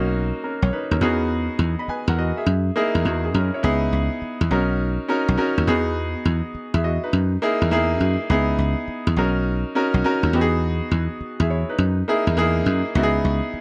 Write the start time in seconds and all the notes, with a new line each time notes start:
Already playing: B1 A#3 C#4 D#4 F#4
0.44 C#4 A#4
0.62 B1 C#5
0.72 D#4 B4, muted slap bass stroke
0.91 D#2 C#4 A#4
1.01 E2 B3 D#4 F#4 G#4
1.59 E2
1.79 D#5 B5
1.88 B4 G#5, muted slap bass stroke
2.08 E2 A#4 F#5
2.18 F#4 D#5
2.37 G#4 E5
2.46 F#2
2.76 A#3 D#4 E4 G#4
2.95 E2
3.05 E2 A#3 F#4
3.25 G#4
3.34 F#2 C#4 A#4
3.54 E4 C#5
3.63 C#2 B3 D#4 E4 G#4
3.93 C#2
4.22 muted slap bass stroke
4.41 E2
4.51 B1 C#4 D#4 F#4 A#4
5.08 C#4 D#4 F#4 A#4
5.28 B1
5.37 C#4 D#4 F#4 A#4, muted slap bass stroke
5.58 D#2
5.67 E2 B3 D#4 F#4 G#4
6.25 E2
6.55 muted slap bass stroke
6.74 E2 G#4 E5
6.84 F#4 D#5
7.04 D#4 B4
7.13 F#2
7.42 A#3 D#4 E4 G#4
7.62 E2
7.71 E2 A#3 D#4 E4 G#4
8.00 F#2
8.30 C#2 B3 D#4 E4 G#4
8.58 C#2
8.88 muted slap bass stroke
9.07 E2
9.16 B1 C#4 D#4 F#4 A#4
9.75 C#4 D#4 F#4 A#4
9.94 B1
10.04 C#4 D#4 F#4 A#4
10.23 D#2
10.33 E2 B3 D#4 F#4 G4
10.41 G#4
10.91 E2
11.21 muted slap bass stroke
11.40 E2 G#4 E5
11.50 E4 C#5
11.69 D#4 B4
11.78 F#2
12.08 A#3 D#4 E4 G#4
12.27 E2
12.37 E2 A#3 D#4 E4 G#4
12.66 F#2
12.95 C#2 B3 D#4 E4 F#4
13.03 G#4
13.24 C#2
13.54 muted slap bass stroke